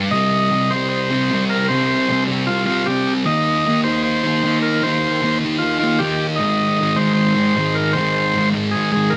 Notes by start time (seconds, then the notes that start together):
Already playing: G2
0.11 C3 G3 C4 D#5
0.51 C3 G3
0.55 C4
0.71 C4 C5
0.76 G3
0.89 C5
1.10 G3 C4
1.30 C3 G3 C4
1.49 A#4
1.69 C3 G3 C5
1.74 C4
2.08 C3 G3 C4
2.28 G3 C4
2.46 F4
2.66 C4 F4
2.70 G3
2.86 C3 G3 G4
2.90 C4
3.25 D#3 A#3 D#5
3.29 D#4
3.66 D#3 A#3 D#4
3.84 D#4 C5
3.88 A#3
4.04 C5
4.23 A#3 D#4
4.43 D#3 A#3 D#4
4.62 A#4
4.82 D#3 A#3 C5
4.87 D#4
5.22 D#3 A#3 D#4
5.40 D#4
5.45 A#3
5.58 F4
5.79 D#4 F4
5.83 A#3
5.99 D#3 A#3 G4
6.04 D#4
6.36 G#2 D#5
6.41 D#3 G#3
6.77 G#2 D#3
6.82 G#3
6.96 G#3 C5
7.01 D#3
7.14 C5
7.35 G#3
7.39 D#3
7.55 G#2 D#3
7.60 G#3
7.75 A#4
7.93 G#2 C5
7.97 D#3 G#3
8.34 G#2 D#3
8.39 G#3
8.54 D#3 G#3
8.71 G#4
8.92 G#3 G#4
8.96 D#3
9.10 G#2 A#4